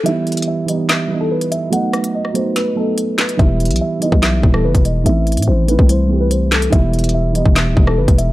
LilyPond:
<<
  \new Staff \with { instrumentName = "Grand piano" } { \time 4/4 \key e \minor \tempo 4 = 144 e''4 e''8 dis''8 e''8. a'16 b'8 e''8 | fis''4 dis''8 c''8 b'8 a'4 b'8 | e''4 e''8 dis''8 e''8. a'16 b'8 dis''8 | e''4 c''8 b'8 c''8. b'16 c''8 a'8 |
e''4 e''8 dis''8 e''8. a'16 b'8 e''8 | }
  \new Staff \with { instrumentName = "Felt piano" } { \time 4/4 \key e \minor <e g b e'>4. <e g b dis'>4 <e g b dis'>4. | <fis a b dis'>4. <fis a b dis'>4 <fis a b dis'>4. | <e g b e'>4. <e g b e'>4 <e g b e'>4. | <e a c' e'>4. <e a c' e'>4 <e a c' g'>4. |
<e g b e'>4. <e g b dis'>4 <e g b dis'>4. | }
  \new Staff \with { instrumentName = "808-style bass" } { \clef bass \time 4/4 \key e \minor r1 | r1 | e,,8. b,,16 r8. b,,8. dis,,8 fis,,16 e,,8. | a,,8. a,16 a,,8. c,2~ c,16 |
e,,4.~ e,,16 e,,8 dis,,16 e,,8 fis,,16 e,,8. | }
  \new DrumStaff \with { instrumentName = "Drums" } \drummode { \time 4/4 hh8 hh32 hh32 hh32 hh32 r8 hh8 <hc hh sn>4 r16 hh16 hh8 | hh8 <hh ss>16 hh16 r16 ss16 hh8 <hh sn>4 hh8 <hc hh sn>16 hh16 | <hh bd>8 hh32 hh32 hh32 hh32 r8 hh16 bd16 <hc hh sn>8 bd16 ss16 r16 <hh bd>16 hh8 | hh8 hh32 hh32 hh32 hh32 r8 hh16 bd16 hh4 hh8 <hc hh sn>16 hh16 |
<hh bd>8 hh32 hh32 hh32 hh32 r8 hh16 bd16 <hc hh sn>8 bd16 ss16 r16 <hh bd>16 hh8 | }
>>